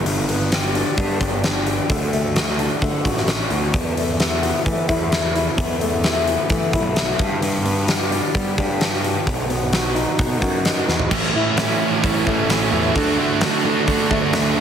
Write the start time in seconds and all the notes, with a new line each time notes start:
0.05 G1 G2, open hi-hat
0.29 B3, open hi-hat
0.52 G4, snare, open hi-hat
0.75 D4, open hi-hat
0.98 G2 B3, kick, open hi-hat
1.21 G1 G4, kick, open hi-hat
1.44 D4, snare, open hi-hat
1.66 G4, open hi-hat
1.90 D2 D3, kick, open hi-hat
2.13 A3, open hi-hat
2.35 F#4, snare, open hi-hat
2.49 snare
2.59 D4, open hi-hat
2.82 D3 A3, kick, open hi-hat
3.04 A1 F#4, kick, open hi-hat
3.17 snare
3.28 D4, snare, open hi-hat
3.50 D2 F#4, open hi-hat
3.73 E2, kick, open hi-hat
3.97 A3, open hi-hat
4.20 E4, snare, open hi-hat
4.43 B3, open hi-hat
4.66 E3 A3, kick, open hi-hat
4.89 E2 E4, kick, open hi-hat
5.11 B3, snare, open hi-hat
5.35 E4, open hi-hat
5.57 E2, kick, open hi-hat
5.81 A3, open hi-hat
6.04 E4, snare, open hi-hat
6.27 B3, open hi-hat
6.50 E3 A3, kick, open hi-hat
6.73 B1 E4, kick, open hi-hat
6.96 B3, snare, open hi-hat
7.19 G2, kick, open hi-hat
7.42 G2, open hi-hat
7.65 B3, open hi-hat
7.87 G4, snare, open hi-hat
8.10 D4, open hi-hat
8.35 G3 B3, kick, open hi-hat
8.58 G2 G4, kick, open hi-hat
8.81 D4, snare, open hi-hat
9.04 G4, open hi-hat
9.27 B1 B2, kick, open hi-hat
9.50 B3, open hi-hat
9.72 F#4, snare, open hi-hat
9.95 D#4, open hi-hat
10.19 B2 B3, kick, open hi-hat
10.42 F#2 F#4, kick, open hi-hat
10.65 D#4, snare, open hi-hat
10.88 E2 F#4, snare
10.99 floor tom
11.11 A1 A2 E3 A3 C#4 E4, kick, crash
11.24 snare
11.34 A2 E3 A3 C#4 E4
11.57 A2 E3 A3 C#4 E4, snare, open hi-hat
11.79 A2 E3 A3 C#4 E4
12.03 A1 A2 E3 A3 C#4 E4, kick, open hi-hat
12.26 A1 A2 E3 A3 C#4 E4, kick
12.50 A2 E3 A3 C#4 E4, snare, open hi-hat
12.71 E2 A2 E3 A3 C#4 E4
12.95 D2 D3 A3 D4 F#4, kick, open hi-hat
13.19 D3 A3 D4 F#4
13.41 D3 A3 D4 F#4, snare, open hi-hat
13.65 D3 A3 D4 F#4
13.87 D3 A3 D4 F#4, kick, open hi-hat
14.10 D2 D3 A3 D4 F#4, kick
14.33 D3 A3 D4 F#4, snare, open hi-hat
14.56 D3 A3 D4 F#4